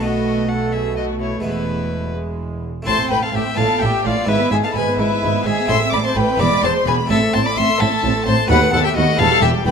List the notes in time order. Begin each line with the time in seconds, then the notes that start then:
Already playing: B1 B2 A3
0.00 B3 F#4 D#5
0.49 A4 F#5
0.73 G#4 E5
0.97 F#4 D#5
1.20 E4 C#5
1.40 E1 E2 G#3 B3 E4 B4
1.44 E2 E4
2.15 G#3
2.82 A3 C4 E4
2.87 A1 A2 A3 C5 A5 C6
2.99 C4
3.10 A1 A2 A3 B4 G5 B5
3.22 C4 A4 F5 A5
3.34 A1 A2 A3 G4 E5 G5
3.45 C4
3.54 A2 A3 B3 D4 F4 F5 A5
3.58 A1 A2 A4
3.69 B3
3.80 A1 A2 A3 G4 E5 G5
3.92 B3
4.04 A1 A2 A3 F4 D5 F5
4.16 B3
4.24 B3 E4 E5
4.28 G#1 G#2 G#3 E4 B4
4.40 B3
4.51 G#1 G#2 G#3 G#4 E5 G#5
4.63 B3 A4 F5 A5
4.74 G#1 G#2 G#3 B4 G#5 B5
4.88 B3
4.98 G#1 G#2 G#3 E4 B4 E5
5.12 B3
5.23 G#1 G#2 G#3
5.36 B3
5.46 G#1 G#2 G#3 G#4 E5 G#5
5.59 B3
5.66 A1 A2 C4 E4 A4 E5 C6 E6
5.70 A2 A3
5.82 C4
5.93 A1 A2 A3 D5 B5 D6
6.05 C4 C5 A5 C6
6.15 A1 A2 A3 B4 G5 B5
6.29 C4
6.36 E1 B3 E4 G#4 D5 B5 D6
6.40 E2 B3
6.52 G#3
6.63 E1 E2 B3 C5 A5 C6
6.76 G#3
6.86 E1 E2 B3 B4 G#5 B5
6.99 G#3
7.06 C4 E4 A4
7.10 A1 A2 C4 A4 E5 A5
7.23 A3
7.34 A1 A2 C4 C5 A5 C6
7.44 A3 D5 B5 D6
7.56 A1 A2 C4 E5 C6 E6
7.69 A3
7.79 A1 A2 C4 A4 E5 A5
7.92 A3
8.03 A1 A2 C4
8.15 A3
8.25 A1 A2 C4 C5 A5 C6
8.38 A3
8.46 D#2 B3 F#4 A4 B4 F#5 B5
8.51 D#2
8.61 A3
8.72 D#2 B3 A4 F#5 A5
8.84 A3 G4 E5 G5
8.95 D#2 B3 F#4 D#5 F#5
9.07 A3
9.16 E2 E3 B3 E4 G4 A4 F5 A5
9.20 E1 E2
9.31 G3
9.42 E1 E2 E3 G4 E5 G5
9.54 G3
9.66 E1 E2 E3 B4 G5 B5